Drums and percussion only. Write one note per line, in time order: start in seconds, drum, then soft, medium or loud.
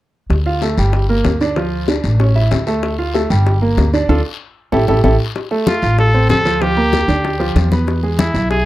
0.30 high bongo medium
0.30 long guiro medium
0.46 high bongo soft
0.62 high bongo medium
0.62 short guiro medium
0.78 short guiro medium
0.93 high bongo medium
0.93 long guiro medium
1.09 high bongo soft
1.25 high bongo medium
1.25 low bongo medium
1.25 short guiro medium
1.40 high bongo soft
1.40 short guiro medium
1.56 high bongo medium
1.56 long guiro medium
1.88 high bongo medium
1.88 short guiro medium
2.04 high bongo soft
2.04 short guiro medium
2.19 high bongo medium
2.19 long guiro medium
2.36 high bongo soft
2.51 high bongo medium
2.51 low bongo medium
2.51 short guiro medium
2.67 high bongo soft
2.67 short guiro medium
2.83 high bongo medium
2.83 long guiro medium
2.99 high bongo soft
3.14 high bongo medium
3.14 short guiro medium
3.30 short guiro medium
3.46 high bongo medium
3.46 long guiro medium
3.62 high bongo soft
3.77 high bongo medium
3.77 low bongo medium
3.77 short guiro medium
3.94 high bongo soft
3.94 short guiro medium
4.09 low bongo medium
4.09 long guiro medium
4.72 low bongo loud
4.72 long guiro loud
4.88 low bongo medium
4.88 long guiro medium
5.04 low bongo medium
5.04 long guiro medium
5.35 high bongo medium
5.35 high conga soft
5.35 long guiro medium
5.51 high bongo soft
5.51 high conga soft
5.67 high bongo medium
5.67 high conga medium
5.67 short guiro medium
5.82 high conga soft
5.82 short guiro medium
5.98 high bongo medium
5.98 high conga soft
5.98 long guiro medium
6.14 high bongo soft
6.14 high conga soft
6.29 high bongo medium
6.29 low bongo medium
6.29 high conga medium
6.29 short guiro medium
6.45 high bongo soft
6.45 high conga soft
6.45 short guiro medium
6.61 high bongo medium
6.61 high conga soft
6.61 long guiro medium
6.77 high conga soft
6.93 high bongo medium
6.93 high conga medium
6.93 short guiro medium
7.09 high bongo soft
7.09 high conga soft
7.09 short guiro medium
7.24 high bongo medium
7.24 high conga soft
7.24 long guiro medium
7.41 high bongo soft
7.41 high conga soft
7.56 high bongo medium
7.56 low bongo medium
7.56 high conga medium
7.56 short guiro medium
7.72 high bongo soft
7.72 high conga medium
7.72 short guiro medium
7.87 high bongo medium
7.87 high conga soft
7.87 long guiro medium
8.03 high bongo soft
8.03 high conga soft
8.19 high bongo medium
8.19 high conga medium
8.19 short guiro medium
8.35 high conga soft
8.35 short guiro medium
8.51 high bongo medium
8.51 high conga soft
8.51 long guiro medium